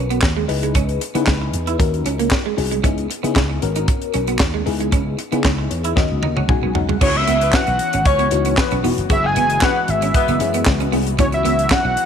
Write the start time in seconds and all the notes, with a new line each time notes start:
Already playing: B1 C#4 F#4 A#4 B4
0.10 B3, closed hi-hat
0.22 D#2, kick, snare, clap
0.37 G#3
0.48 C#2 D#4 E4 G#4 B4, muted clean electric guitar stroke, open hi-hat
0.63 G#3, closed hi-hat
0.75 C#2 C#4, kick, closed hi-hat
0.89 closed hi-hat
1.01 muted clean electric guitar stroke, closed hi-hat
1.14 C#3 B3 D#4 E4 G#4 B4, closed hi-hat
1.27 C#2 C#4, kick, snare, clap
1.42 muted clean electric guitar stroke
1.53 E2, closed hi-hat
1.67 E4, closed hi-hat
1.79 D#2 C#4 D#4 F#4 A#4, muted clean electric guitar stroke, kick, closed hi-hat
1.94 closed hi-hat
2.06 C#2 C#4, closed hi-hat
2.19 A#3, closed hi-hat
2.31 kick, snare, clap
2.46 G#3
2.57 C2 C#4 D#4 F#4 G#4, muted clean electric guitar stroke, open hi-hat
2.71 G#3, closed hi-hat
2.83 C#2 B3 C#4 D#4 E4 G#4, kick, closed hi-hat
2.98 closed hi-hat
3.10 muted clean electric guitar stroke, closed hi-hat
3.23 C#3 B3 D#4 E4 G#4, closed hi-hat
3.36 C#2 C#4, kick, snare, clap
3.50 muted clean electric guitar stroke
3.62 G#1 B3 C#4 F#4 A#4, closed hi-hat
3.76 D#4, closed hi-hat
3.88 muted clean electric guitar stroke, kick, closed hi-hat
4.02 closed hi-hat
4.14 B1 C#4, closed hi-hat
4.27 B3, closed hi-hat
4.39 D#2, kick, snare, clap
4.54 G#3
4.66 C#2 B3 D#4 E4 G#4, muted clean electric guitar stroke, open hi-hat
4.80 G#3, closed hi-hat
4.92 C#2 C#4, kick, closed hi-hat
5.19 muted clean electric guitar stroke, closed hi-hat
5.32 C#3 B3 D#4 E4 G#4, closed hi-hat
5.44 C#2 C#4, kick, snare, clap
5.59 muted clean electric guitar stroke
5.71 E2 C#5, closed hi-hat
5.84 E4 E5, closed hi-hat
5.96 D#2 A#3 C#4 D#4 F#4 D#5, muted clean electric guitar stroke, kick, snare
6.12 C#2
6.23 D#2 D#4, high tom
6.36 C#2 C#4 F#5, high tom
6.49 B1 G#3 C#4 D#4 F#4 G#5, kick, mid tom
6.63 B1 B3
6.75 B1 G#3 C#4 D#4 F#4 F#5, muted clean electric guitar stroke, floor tom
6.89 C2 G#3, floor tom
7.01 C#2 E3 B3 C#4 E4 F#4 C#5, kick, crash
7.15 E5, muted clean electric guitar stroke
7.27 C#2 B3, closed hi-hat
7.41 B3 B4, closed hi-hat
7.53 C#4 F#5, kick, snare, clap
7.67 B1, muted clean electric guitar stroke, closed hi-hat
7.79 closed hi-hat
7.93 G#1 C#4, closed hi-hat
8.05 C#2 C#4 C#5, kick, closed hi-hat
8.19 B3, closed hi-hat
8.31 C#2 B3 D#4 E4 F#4, muted clean electric guitar stroke, closed hi-hat
8.45 B3, closed hi-hat
8.57 B3 B4, muted clean electric guitar stroke, kick, snare, clap
8.71 B1 C#4, closed hi-hat
8.83 E1 B3 D#4 E4 F#4, open hi-hat
8.98 F1, closed hi-hat
9.09 F#1 E3 G#3 B3 C#4 E4 F#4 G#4 E5, kick, closed hi-hat
9.24 G#3 G#4 G#5, muted clean electric guitar stroke
9.36 F#1 B3, closed hi-hat
9.50 G#3 G#4, closed hi-hat
9.61 B3 C#4 B4 F#5, kick, snare, clap
9.76 muted clean electric guitar stroke
9.88 G#1 E5, closed hi-hat
10.02 C#4, closed hi-hat
10.14 B3 B4, kick, closed hi-hat
10.28 F#1 B3, closed hi-hat
10.40 F#2 B3 C#4 E4 G#4, muted clean electric guitar stroke, closed hi-hat
10.54 B3, closed hi-hat
10.65 C#2, muted clean electric guitar stroke, kick, snare, clap
10.80 C#4, closed hi-hat
10.92 C2 B3 C#4 E4 G#4, open hi-hat
11.06 closed hi-hat
11.18 C#2 E3 F#3 B3 C#4 E4 F#4 C#5, kick, closed hi-hat
11.32 E5, muted clean electric guitar stroke, closed hi-hat
11.45 C#2 B3, closed hi-hat
11.59 closed hi-hat
11.70 C#4 F#5, kick, snare, clap
11.85 B1, muted clean electric guitar stroke
11.97 closed hi-hat